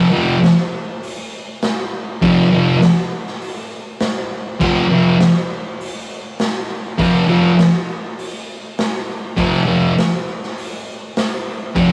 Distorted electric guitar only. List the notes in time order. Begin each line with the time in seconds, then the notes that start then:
0.12 F2 C3 F3
2.22 F2 C3 F3
2.52 F2 C3 F3
4.61 F2 C3 F3
4.91 F2 C3 F3
6.99 F2 C3 F3
7.28 F2 C3 F3
9.37 F2 C3 F3
9.67 F2 C3 F3
11.75 F2 C3 F3